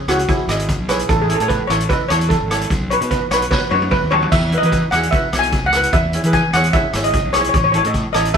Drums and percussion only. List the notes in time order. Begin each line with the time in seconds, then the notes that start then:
0.08 cross-stick, closed hi-hat
0.19 closed hi-hat
0.28 kick, closed hi-hat
0.49 cross-stick, closed hi-hat
0.59 closed hi-hat
0.69 kick, closed hi-hat
0.89 cross-stick, closed hi-hat
0.99 closed hi-hat
1.09 kick, closed hi-hat
1.30 closed hi-hat
1.40 closed hi-hat
1.49 kick, closed hi-hat
1.70 cross-stick, closed hi-hat
1.80 closed hi-hat
1.90 kick, closed hi-hat
2.10 cross-stick, closed hi-hat
2.21 closed hi-hat
2.30 kick, closed hi-hat
2.51 cross-stick, closed hi-hat
2.61 closed hi-hat
2.70 kick, closed hi-hat
2.91 closed hi-hat
3.01 closed hi-hat
3.11 kick, closed hi-hat
3.31 cross-stick, closed hi-hat
3.42 closed hi-hat
3.51 kick, snare
3.71 high tom
3.82 high tom
3.91 kick, mid tom
4.11 floor tom
4.22 floor tom
4.32 kick, closed hi-hat, splash
4.52 closed hi-hat
4.63 closed hi-hat
4.72 kick, closed hi-hat
4.92 cross-stick, closed hi-hat
5.03 closed hi-hat
5.13 kick, closed hi-hat
5.33 cross-stick, closed hi-hat
5.43 closed hi-hat
5.52 kick, closed hi-hat
5.73 cross-stick, closed hi-hat
5.83 closed hi-hat
5.93 kick, closed hi-hat
6.13 closed hi-hat
6.24 closed hi-hat
6.33 kick, closed hi-hat
6.53 cross-stick, closed hi-hat
6.64 closed hi-hat
6.73 kick, closed hi-hat
6.93 cross-stick, closed hi-hat
7.04 closed hi-hat
7.13 kick, closed hi-hat
7.34 cross-stick, closed hi-hat
7.44 closed hi-hat
7.54 kick, closed hi-hat
7.74 closed hi-hat
7.84 closed hi-hat
7.94 kick, closed hi-hat
8.14 cross-stick, closed hi-hat
8.25 closed hi-hat
8.34 closed hi-hat